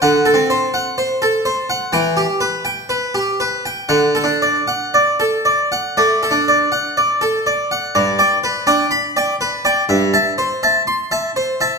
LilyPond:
<<
  \new Staff \with { instrumentName = "Harpsichord" } { \time 4/4 \key g \major \tempo 4 = 62 fis''16 a'16 c''16 fis''16 c''16 a'16 c''16 fis''16 g''16 g'16 b'16 g''16 b'16 g'16 b'16 g''16 | fis''16 a'16 d''16 fis''16 d''16 a'16 d''16 fis''16 d''16 a'16 d''16 fis''16 d''16 a'16 d''16 fis''16 | d''16 <d'' g''>16 b'16 <d'' g''>16 b''16 <d'' g''>16 b'16 <d'' g''>16 e''16 <e'' a''>16 c''16 <e'' a''>16 c'''16 <e'' a''>16 c''16 <e'' a''>16 | }
  \new Staff \with { instrumentName = "Harpsichord" } { \clef bass \time 4/4 \key g \major \tuplet 3/2 { d8 c'8 r8 } r4 e16 r4. r16 | \tuplet 3/2 { d8 d'8 r8 } r4 \tuplet 3/2 { a8 d'8 r8 } r4 | g,16 r8 d'16 r4 g,16 r4. r16 | }
>>